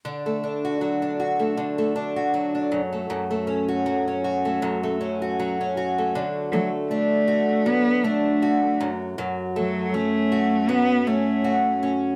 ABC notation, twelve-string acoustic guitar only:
X:1
M:4/4
L:1/16
Q:"Swing 16ths" 1/4=79
K:D
V:1 name="Twelve-string acoustic guitar"
D, A, D F F, D F A, D, A, D F F, D F,, A, | F,, A, C F F, C F A, F,, A, C F F, C F A, | D,2 A,2 D2 F2 F,2 D2 F2 F,,2 | F,,2 A,2 C2 F2 F,2 C2 F2 C2 |]